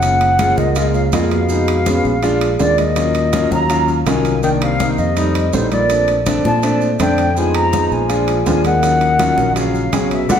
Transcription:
Already playing: fingered electric bass F#1, tenor saxophone C#3, flute F#5
0.02 grand piano G#3 A#3 F4, high conga, high timbale, maracas
0.21 high conga, high timbale, maracas
0.39 grand piano G#3 A#3 F4, high conga, high timbale, low timbale, maracas
0.57 fingered electric bass C#2, tenor saxophone A#2, flute D#5, high conga, maracas
0.76 grand piano G#3 A#3 F4, high conga, high timbale, maracas
0.94 tenor saxophone C#3, flute F5, high conga, maracas
1.12 fingered electric bass F2, tenor saxophone A#2, grand piano G#3 A#3 F4, flute D#5, high conga, high timbale, low timbale, maracas
1.30 tenor saxophone B2, flute F5, high conga, high timbale, maracas
1.49 grand piano G#3 B3 D#4, high conga, maracas
1.68 high conga, high timbale, maracas
1.86 grand piano G#3 B3 C#4, high conga, high timbale, low timbale, maracas
2.04 fingered electric bass A#1, high conga, maracas
2.23 grand piano G#3 D4 F4, high conga, high timbale, maracas
2.41 high conga, high timbale, maracas
2.59 fingered electric bass D#2, tenor saxophone A#2, grand piano G#3 D4 F4, flute D5, high conga, low timbale, maracas
2.78 tenor saxophone A#2, flute D#5, high conga, high timbale, maracas
2.96 grand piano F#3 C#4 F4, high conga, high timbale, maracas
3.15 high conga, high timbale, maracas
3.33 grand piano F#3 C#4 F4, high conga, high timbale, low timbale, maracas
3.51 fingered electric bass D#2, tenor saxophone F#3, flute A#5, high conga, maracas
3.70 grand piano F#3 C#4 F4, high conga, high timbale, maracas
3.88 high conga, maracas
4.06 fingered electric bass C2, tenor saxophone D#3, grand piano F#3 C#4 F4, flute G#5, high conga, high timbale, low timbale, maracas
4.25 high conga, high timbale, maracas
4.43 grand piano D#3 A#3 D4, tenor saxophone D#3, flute G5, high conga, maracas
4.61 tenor saxophone C3, flute F5, high conga, high timbale, maracas
4.80 grand piano D#3 A#3 D#4, high conga, high timbale, low timbale, maracas
4.98 fingered electric bass F2, tenor saxophone C3, flute D#5, high conga, maracas
5.17 grand piano G3 A3 D#4, high conga, high timbale, maracas
5.35 high conga, high timbale, maracas
5.53 fingered electric bass A#1, tenor saxophone A2, grand piano G3 A3 D#4, flute C5, high conga, low timbale, maracas
5.72 tenor saxophone A#2, flute D5, high conga, high timbale, maracas
5.90 grand piano A3 C4 D4, high conga, high timbale, maracas
6.08 high conga, high timbale, maracas
6.26 grand piano A3 C4 D4, high conga, high timbale, low timbale, maracas
6.44 fingered electric bass A#2, tenor saxophone F3, flute A5, high conga, maracas
6.63 grand piano A3 C4 D4, high conga, high timbale, maracas
6.81 high conga, maracas
6.99 fingered electric bass F2, tenor saxophone D3, grand piano A3 C4 D4, flute G5, high conga, high timbale, low timbale, maracas
7.18 high conga, high timbale, maracas
7.36 tenor saxophone F3, grand piano G#3 B3 D#4, flute G#5, high conga, maracas
7.54 tenor saxophone F3, flute A#5, high conga, high timbale, maracas
7.73 grand piano G#3 B3 D#4, high conga, high timbale, low timbale, maracas
7.91 fingered electric bass A#1, tenor saxophone F3, flute G#5, high conga, maracas
8.09 grand piano G#3 D4 F4, high conga, high timbale, maracas
8.28 high conga, high timbale, maracas
8.45 fingered electric bass D#2, tenor saxophone F3, grand piano G#3 D4 F4, flute G#5, high conga, low timbale, maracas
8.64 tenor saxophone D#3, flute F#5, high conga, high timbale, maracas
8.82 grand piano F#3 C#4 F4, high conga, high timbale, maracas
9.01 high conga, high timbale, maracas
9.19 grand piano F#3 C#4 F4, high conga, high timbale, low timbale, maracas
9.37 fingered electric bass A#1, high conga, maracas
9.56 tenor saxophone C#3, grand piano F#3 C#4 F4, flute F5, high conga, high timbale, maracas
9.75 high conga, maracas
9.92 fingered electric bass B1, grand piano F#3 C#4 G#4, high conga, high timbale, low timbale, maracas
10.11 tenor saxophone B2, flute E5, high conga, high timbale, maracas
10.29 fingered electric bass B1, tenor saxophone D3, grand piano A3 B3 D4, flute F#5, high conga, high timbale, maracas

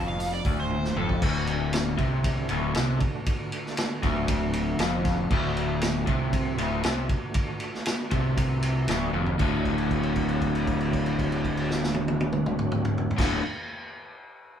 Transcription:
Already playing: fingered electric bass F1, overdriven electric guitar F2, tonewheel organ D4 F#4 A4
0.08 electric slide guitar F5
0.20 open hi-hat
0.33 electric slide guitar D5
0.45 fingered electric bass D1, overdriven electric guitar D2, kick, open hi-hat
0.60 electric slide guitar C5
0.70 high tom
0.84 snare
0.96 fingered electric bass F1, overdriven electric guitar F2, electric slide guitar A4, mid tom
1.09 kick
1.19 fingered electric bass D1, overdriven electric guitar D2, tonewheel organ D3 A3 D4 F#4, kick, crash
1.47 ride
1.73 snare, ride
1.98 fingered electric bass C2, overdriven electric guitar C3, kick, ride
2.24 kick, ride
2.49 fingered electric bass D1, overdriven electric guitar D2, ride
2.75 fingered electric bass C2, overdriven electric guitar C3, snare, ride
3.00 kick, ride
3.26 kick, ride
3.52 ride
3.66 snare
3.77 snare, ride
4.03 fingered electric bass D1, overdriven electric guitar D2, kick, ride
4.28 kick, ride
4.53 ride
4.79 fingered electric bass F1, overdriven electric guitar F2, snare, ride
5.05 kick, snare, ride
5.30 fingered electric bass D1, overdriven electric guitar D2, tonewheel organ A3 D4 F#4, kick, crash
5.57 ride
5.82 snare, ride
6.07 fingered electric bass C2, overdriven electric guitar C3, kick, ride
6.33 kick, ride
6.58 fingered electric bass D1, overdriven electric guitar D2, ride
6.83 fingered electric bass C2, overdriven electric guitar C3, snare, ride
7.09 kick, ride
7.34 kick, ride
7.60 ride
7.74 snare
7.86 snare, ride
8.11 fingered electric bass C2, overdriven electric guitar C3, kick, ride
8.37 kick, ride
8.63 ride
8.88 fingered electric bass D1, overdriven electric guitar D2, snare, ride
9.13 fingered electric bass F1, overdriven electric guitar F2, high tom
9.26 floor tom
9.37 fingered electric bass D1, overdriven electric guitar D2 A2, tonewheel organ F#3 A3 D4 F#4, kick, crash
9.42 overdriven electric guitar D3
9.65 kick, crash
9.78 crash
9.91 kick, crash
10.03 crash
10.16 kick, crash
10.29 crash
10.42 kick, crash
10.55 crash
10.67 kick, crash
10.81 crash
10.93 kick, crash
11.06 crash
11.19 kick, crash
11.32 crash
11.44 kick, crash
11.57 crash
11.71 snare
11.84 snare
11.94 high tom
12.08 high tom
12.21 high tom
12.33 mid tom
12.46 mid tom
12.59 mid tom
12.72 mid tom
12.85 mid tom
12.98 floor tom
13.11 floor tom
13.17 fingered electric bass D1, overdriven electric guitar D2 A2 D3, tonewheel organ F#3 A3 D4 F#4, kick, snare, crash

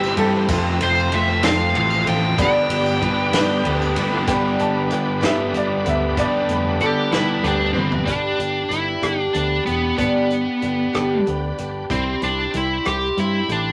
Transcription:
Already playing: picked electric bass G1, twelve-string acoustic guitar C3 G3 C4 E4 G4, overdriven electric guitar E3 G3 C4 G4, tonewheel organ E4 G4 C5, upright piano G4, lead electric guitar E5
0.03 tambourine
0.17 picked electric bass G2, twelve-string acoustic guitar C4 E4 G4, upright piano A4, ride
0.21 overdriven electric guitar G3
0.48 picked electric bass F1, overdriven electric guitar F2 C3 A3, twelve-string acoustic guitar F3 C4 F4 A4, tonewheel organ F4 A4 C5, kick, ride, tambourine
0.80 picked electric bass F1, overdriven electric guitar F3 A3 C4 F4, lead electric guitar C5, ride
0.95 tambourine
1.12 picked electric bass F1, twelve-string acoustic guitar F3 C4 F4 A4, overdriven electric guitar A3, lead electric guitar E5, ride
1.28 tambourine
1.43 picked electric bass F1, twelve-string acoustic guitar F3 C4 F4 A4, overdriven electric guitar A3, lead electric guitar F5, snare, ride, tambourine
1.60 tambourine
1.74 picked electric bass A1, overdriven electric guitar F3 A3 C4 F4, lead electric guitar F5, ride, tambourine
1.90 tambourine
2.06 picked electric bass A1, overdriven electric guitar F3 A3, twelve-string acoustic guitar C4 F4 A4, lead electric guitar G5, ride
2.37 picked electric bass G1, twelve-string acoustic guitar G2 D3 G3 B3 D4 B4, tonewheel organ D4 G4 B4, overdriven electric guitar G4, kick, ride, tambourine
2.42 lead electric guitar G5
2.69 picked electric bass G1, overdriven electric guitar G3 B3 D4 G4, ride
2.86 tambourine
3.01 picked electric bass G1, twelve-string acoustic guitar G3 B3 D4 B4, overdriven electric guitar G4, kick, ride
3.18 tambourine
3.32 picked electric bass G1, twelve-string acoustic guitar G2 D3 G3 B3 D4 B4, overdriven electric guitar G4, snare, ride, tambourine
3.63 picked electric bass D2, overdriven electric guitar G3 B3 D4 G4, ride
3.82 tambourine
3.96 picked electric bass G1, tonewheel organ G3, twelve-string acoustic guitar G3 B3 D4 B4, overdriven electric guitar G4, ride, tambourine
4.01 tonewheel organ A3 B3
4.07 tonewheel organ C4 D4
4.11 tonewheel organ E4 F4
4.17 tonewheel organ G4 A4
4.23 tonewheel organ B4 C5
4.27 picked electric bass G1, twelve-string acoustic guitar G2 D3 G3 B3 D4 B4, tonewheel organ D4 G4 B4, overdriven electric guitar G4, upright piano G5, kick, closed hi-hat
4.59 picked electric bass G1, upright piano A5, closed hi-hat
4.90 picked electric bass G1, twelve-string acoustic guitar G3 B3 D4 B4, upright piano G5, closed hi-hat
5.21 picked electric bass G1, twelve-string acoustic guitar G2 D3 G3 B3 D4 B4, overdriven electric guitar G4, snare, closed hi-hat
5.26 upright piano E5
5.54 picked electric bass G1, upright piano D5, closed hi-hat
5.84 picked electric bass D2, twelve-string acoustic guitar G3 B3 D4 B4, closed hi-hat
5.89 upright piano E5
6.17 picked electric bass G1, twelve-string acoustic guitar G2 D3 G3 B3 D4 B4, overdriven electric guitar G4, upright piano D5, kick, closed hi-hat
6.49 picked electric bass F1, upright piano B4, closed hi-hat
6.80 picked electric bass G1, twelve-string acoustic guitar G3 B3 D4 B4, lead electric guitar G4, upright piano A4, closed hi-hat
7.12 twelve-string acoustic guitar G2 D3 G3 B3 D4 B4, lead electric guitar E4, overdriven electric guitar G4, upright piano B4, snare, closed hi-hat
7.43 picked electric bass D2, lead electric guitar D4, closed hi-hat
7.47 upright piano G4
7.73 picked electric bass G1, lead electric guitar C4, twelve-string acoustic guitar D4 B4, high tom
7.78 twelve-string acoustic guitar G3
7.92 floor tom
8.05 picked electric bass G1, twelve-string acoustic guitar G2 D3 G3 B3 D4 G4, lead electric guitar D4, tonewheel organ D4 G4 B4, kick, closed hi-hat
8.38 picked electric bass G1, twelve-string acoustic guitar G3 B3 D4 G4, closed hi-hat
8.69 picked electric bass G1, twelve-string acoustic guitar G3 B3 D4, lead electric guitar E4, closed hi-hat
8.73 twelve-string acoustic guitar G4
9.02 picked electric bass G1, twelve-string acoustic guitar G2 D3 G3 B3 D4 G4, cross-stick, closed hi-hat
9.20 lead electric guitar D4
9.33 picked electric bass D2, twelve-string acoustic guitar G3 B3 D4 G4, lead electric guitar D4, closed hi-hat
9.65 picked electric bass E1, twelve-string acoustic guitar G3 B3 D4 G4, lead electric guitar B3, closed hi-hat
9.96 picked electric bass G1, twelve-string acoustic guitar G2 D3 G3 B3 D4 G4, lead electric guitar B3, kick, closed hi-hat
10.29 twelve-string acoustic guitar G3 B3 D4 G4, closed hi-hat
10.61 picked electric bass G1, twelve-string acoustic guitar G3 B3 D4 G4, closed hi-hat
10.93 picked electric bass G1, twelve-string acoustic guitar G2 D3 G3 B3 D4 G4, cross-stick, closed hi-hat
11.26 picked electric bass D2, twelve-string acoustic guitar G3 B3 D4 G4, closed hi-hat
11.58 picked electric bass G1, twelve-string acoustic guitar G3 B3 D4 G4, closed hi-hat
11.89 picked electric bass C2, twelve-string acoustic guitar C3 G3 C4 E4 G4, tonewheel organ C4 E4 G4, lead electric guitar C4, kick, closed hi-hat
12.21 picked electric bass C2, twelve-string acoustic guitar C4 E4 G4, lead electric guitar D4, closed hi-hat
12.53 picked electric bass C2, twelve-string acoustic guitar G3 C4 E4 G4, lead electric guitar E4, closed hi-hat
12.85 picked electric bass C2, twelve-string acoustic guitar C3 G3 C4 E4 G4, lead electric guitar G4, cross-stick, closed hi-hat
13.17 picked electric bass G2, twelve-string acoustic guitar G3 C4 E4 G4, lead electric guitar E4, closed hi-hat
13.48 picked electric bass A1, twelve-string acoustic guitar C4 E4 G4, lead electric guitar D4, closed hi-hat

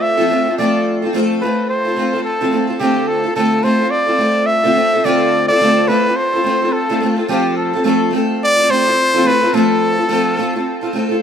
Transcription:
Already playing: steel-string acoustic guitar A3 C4 F4 A4
0.01 trumpet E5
0.17 steel-string acoustic guitar F3 A3 C4 F4 A4
0.28 steel-string acoustic guitar A3 C4 F4 A4
0.45 steel-string acoustic guitar C4 F4 A4
0.58 steel-string acoustic guitar F3 A3 C4 F4 A4, trumpet D5
1.02 steel-string acoustic guitar C4 F4 A4
1.13 steel-string acoustic guitar F3 A3 C4 F4 A4
1.41 steel-string acoustic guitar A3 C4 F4 A4, trumpet B4
1.69 trumpet C5
1.85 steel-string acoustic guitar C4 F4 A4
1.96 steel-string acoustic guitar A3 C4 F4 A4
2.13 steel-string acoustic guitar C4 F4 A4
2.24 trumpet A4
2.41 steel-string acoustic guitar F3 A3 C4 F4 A4
2.51 steel-string acoustic guitar A3 C4 F4 A4
2.67 steel-string acoustic guitar C4 F4 A4
2.79 steel-string acoustic guitar D3 A3 C4 F4 A4, trumpet G4
3.08 trumpet A4
3.24 steel-string acoustic guitar C4 F4 A4
3.36 steel-string acoustic guitar D3 A3 C4 F4 A4, trumpet A4
3.63 steel-string acoustic guitar A3 C4 F4 A4, trumpet C5
3.79 steel-string acoustic guitar C4 F4 A4
3.91 trumpet D5
4.07 steel-string acoustic guitar C4 F4 A4
4.18 steel-string acoustic guitar A3 C4 F4 A4
4.46 trumpet E5
4.63 steel-string acoustic guitar D3 A3 C4 F4 A4
4.74 steel-string acoustic guitar A3 C4 F4 A4
4.93 steel-string acoustic guitar C4 F4 A4
5.04 steel-string acoustic guitar D3 A3 C4 F4 A4, trumpet D5
5.48 steel-string acoustic guitar C4 F4 A4, trumpet D5
5.60 steel-string acoustic guitar D3 A3 C4 F4 A4
5.87 steel-string acoustic guitar A3 C4 F4 A4, trumpet B4
6.06 steel-string acoustic guitar C4 F4 A4
6.16 trumpet C5
6.33 steel-string acoustic guitar C4 F4 A4
6.44 steel-string acoustic guitar A3 C4 F4 A4
6.62 steel-string acoustic guitar C4 F4 A4
6.73 trumpet A4
6.89 steel-string acoustic guitar D3 A3 C4 F4 A4
7.00 steel-string acoustic guitar A3 C4 F4 A4
7.16 steel-string acoustic guitar C4 F4 A4
7.28 steel-string acoustic guitar F3 A3 C4 F4 A4, trumpet G4
7.57 trumpet A4
7.73 steel-string acoustic guitar C4 F4 A4
7.84 steel-string acoustic guitar F3 A3 C4 F4 A4, trumpet A4
8.11 steel-string acoustic guitar A3 C4 F4 A4
8.44 trumpet D5
8.57 steel-string acoustic guitar C4 F4 A4
8.68 steel-string acoustic guitar A3 C4 F4 A4, trumpet C5
8.85 steel-string acoustic guitar F4 A4
8.89 steel-string acoustic guitar C4
9.14 steel-string acoustic guitar F3 A3 C4 F4 A4
9.24 steel-string acoustic guitar A3 C4 F4 A4, trumpet B4
9.41 steel-string acoustic guitar C4 F4 A4
9.53 steel-string acoustic guitar F3 A3 C4 F4 A4, trumpet A4
9.97 steel-string acoustic guitar C4 F4 A4
10.09 steel-string acoustic guitar F3 A3 C4 F4 A4
10.37 steel-string acoustic guitar A3 C4 F4 A4
10.53 steel-string acoustic guitar C4 F4 A4
10.81 steel-string acoustic guitar C4 F4 A4
10.93 steel-string acoustic guitar A3 C4 F4 A4
11.09 steel-string acoustic guitar C4 F4 A4

